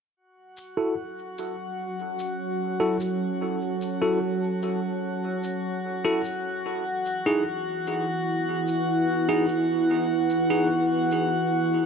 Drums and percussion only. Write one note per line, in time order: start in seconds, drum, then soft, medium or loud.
0.57 shaker soft
1.38 shaker soft
2.19 shaker soft
3.00 shaker soft
3.81 shaker soft
4.63 shaker soft
5.44 shaker soft
6.25 shaker soft
7.06 shaker soft
7.87 shaker soft
8.68 shaker soft
9.49 shaker soft
10.30 shaker soft
11.11 shaker soft